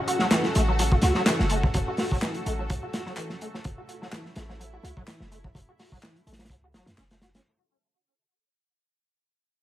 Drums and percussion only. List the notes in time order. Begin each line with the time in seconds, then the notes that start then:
0.08 closed hi-hat
0.19 snare
0.31 snare, clap, closed hi-hat
0.43 snare
0.55 closed hi-hat
0.79 closed hi-hat
0.92 kick
1.02 snare, closed hi-hat
1.15 snare
1.26 snare, clap, closed hi-hat
1.39 snare
1.50 closed hi-hat
1.63 kick
1.74 kick, closed hi-hat
1.97 snare, open hi-hat
2.11 kick
2.21 snare, clap, closed hi-hat
2.34 closed hi-hat
2.46 closed hi-hat
2.70 kick, closed hi-hat
2.93 snare, closed hi-hat
3.06 snare
3.17 clap, closed hi-hat
3.30 snare
3.41 closed hi-hat
3.54 snare
3.64 kick, closed hi-hat
3.89 closed hi-hat
4.02 snare
4.12 snare, clap, closed hi-hat
4.25 snare
4.36 snare, closed hi-hat
4.50 snare
4.61 closed hi-hat
4.85 closed hi-hat
4.97 kick
5.07 snare, clap, closed hi-hat
5.21 snare
5.32 closed hi-hat
5.44 kick
5.55 kick, closed hi-hat
5.79 snare, open hi-hat
5.92 kick
6.03 snare, clap, closed hi-hat
6.16 closed hi-hat
6.27 closed hi-hat
6.33 snare, closed hi-hat
6.39 snare, closed hi-hat
6.45 snare, closed hi-hat
6.50 kick, closed hi-hat
6.74 snare, closed hi-hat
6.87 snare, closed hi-hat
6.98 snare, clap, closed hi-hat
7.11 snare, closed hi-hat
7.21 snare, closed hi-hat
7.35 snare, closed hi-hat